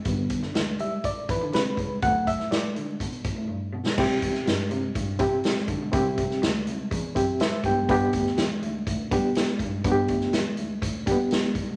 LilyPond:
<<
  \new Staff \with { instrumentName = "Reed electric piano" } { \time 4/4 \key g \major \tempo 4 = 123 << { <d g b>8 r4 e''8 d''8 b'8 b'4 | <d fis a fis''>8 e''8 d''8 r2 r8 | r1 | r2. <e' c'' e''>8 <b g' g''>8~ |
<b g' g''>8 r2. r8 | r1 | } \\ { r1 | r1 | <c' e' g'>4 r4. <c' e' g'>4 r8 | <c' e' g'>4 r4. <c' e' g'>8 r4 |
<b d' g'>4 r4. <b d' g'>4 r8 | <b d' fis' g'>4 r4. <bes b d' g'>4 r8 | } >> }
  \new Staff \with { instrumentName = "Cello" } { \clef bass \time 4/4 \key g \major g,8. d16 d,8 g8. r16 e16 d16 c8 cis,8 | d,8. a,16 a,8 d8 b,8 a,16 a,16 g,16 r16 b,8 | c,8 e,8 g,8 c8 g,8 c8. r16 d16 b,16 | c,8 c,8 d,8 c,8 e,8 fis,8. r16 g,16 fis,16 |
g,8 d,8 e,8 d,8 d,8 g4 g,8 | g,8 d,8 e,8 d,8 d,8 g8. r16 g16 b,16 | }
  \new DrumStaff \with { instrumentName = "Drums" } \drummode { \time 4/4 <hh bd>8 <hh bd>16 sn16 <hh sn>8 hh8 <hh bd>8 <hh bd>8 <hh sn>8 <hh bd>8 | <hh bd>8 <hh bd>16 sn16 <hh sn>8 hh8 <hh bd>16 hh16 <hh bd>8 r8. sn16 | <cymc bd>8 <hh bd>16 sn16 <hh sn>8 hh8 <hh bd>8 <hh bd>8 <hh sn>16 sn16 <hh bd>8 | <hh bd>8 <hh bd>16 sn16 <hh sn>8 hh8 <hh bd>8 <hh bd>8 <hh sn>8 <hh bd>8 |
<hh bd>8 <hh bd>16 sn16 <hh sn>8 hh8 <hh bd>8 <hh bd>8 <hh sn>16 sn16 <hh bd>8 | <hh bd>8 <hh bd>16 sn16 <hh sn>8 hh8 <hh bd>8 <hh bd>8 <hh sn>16 sn16 <hh bd>8 | }
>>